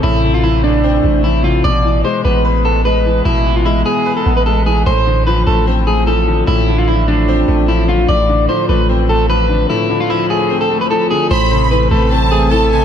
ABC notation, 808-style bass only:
X:1
M:4/4
L:1/8
Q:1/4=149
K:Am
V:1 name="808-style bass" clef=bass
A,,,4- A,,, A,,,3 | A,,,2 z A,,,4- A,,, | A,,,3 z2 A,,,3 | A,,,3 A,,,4- A,,, |
A,,,4- A,,, A,,,3 | A,,,2 z A,,,4- A,,, | z8 | A,,,3 A,,,4- A,,, |]